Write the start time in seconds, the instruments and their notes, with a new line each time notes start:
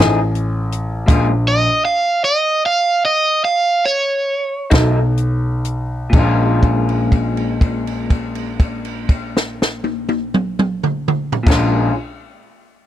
Already playing: clean electric guitar A3 D#4 G#4
0.00 grand piano A1, clean electric guitar F3, snare
0.35 closed hi-hat
0.72 closed hi-hat
1.06 grand piano A#1, clean electric guitar A#2 G#3 C#4 F4, kick, closed hi-hat, crash
1.48 overdriven electric guitar D#5
1.85 overdriven electric guitar F5
2.24 overdriven electric guitar D#5
2.66 overdriven electric guitar F5
3.05 overdriven electric guitar D#5
3.45 overdriven electric guitar F5
3.86 overdriven electric guitar C#5
4.70 grand piano B1, clean electric guitar B2 F#3 A3 D#4, kick, snare, closed hi-hat
5.17 closed hi-hat
5.65 closed hi-hat
6.10 grand piano A#1, clean electric guitar A#2, kick, crash
6.14 clean electric guitar G#3 C#4
6.19 clean electric guitar F4
6.63 kick, crash
6.89 crash
7.12 kick, crash
7.37 crash
7.61 kick, crash
7.87 crash
8.10 kick, crash
8.35 crash
8.60 kick, crash
8.85 crash
9.09 kick, crash
9.37 snare
9.62 snare
9.84 high tom
10.09 high tom
10.34 mid tom
10.59 mid tom
10.83 mid tom
11.08 mid tom
11.32 floor tom
11.43 grand piano A#1, clean electric guitar A#2 G#3, kick
11.48 clean electric guitar C#4, snare, crash
11.52 clean electric guitar F4